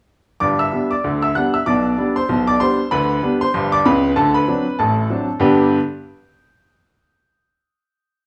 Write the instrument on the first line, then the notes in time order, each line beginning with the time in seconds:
grand piano
0.40 G1 G2 D5 D6
0.59 E5 E6
0.73 G3 B3 D4
0.91 D5 D6
1.04 D2 D3
1.22 E5 E6
1.35 G3 B3 D4 F#5 F#6
1.54 E5 E6
1.66 B1 B2 D5 D6
1.98 G3 B3 D4
2.16 C5 C6
2.29 B1 B2
2.47 D5 D6
2.60 G3 B3 D4 C5 C6
2.91 D2 D3 B4 B5
3.23 G3 B3 D4
3.41 C5 C6
3.54 G1 G2
3.72 D5 D6
3.85 C#2 C#3 B4 B5
4.16 D2 D3 A4 A5
4.34 B4 B5
4.48 F#3 C4 D4
4.79 A1 A2 A4 A5
5.10 F#3 C4 D4
5.40 G2 D3 B3 D4 G4 B4 G5